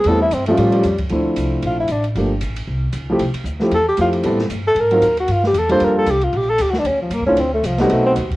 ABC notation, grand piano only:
X:1
M:4/4
L:1/8
Q:"Swing" 1/4=229
K:C
V:1 name="Grand piano"
[G,A,B,CE] z2 [F,G,A,^CF]3 z2 | [K:Dm] [F,A,CDE]4- [F,A,CDE] z3 | [F,A,B,DG] z6 [F,A,CEG] | z3 [F,A,CEG] z2 [F,A,CEG]2 |
[G,=B,CEA] z4 [^F,^B,^D^E^A] z2 | z3 [G,B,DFA]3 z2 | z6 z [A,CDEF] | z3 [A,=B,C_E^F]3 z2 |]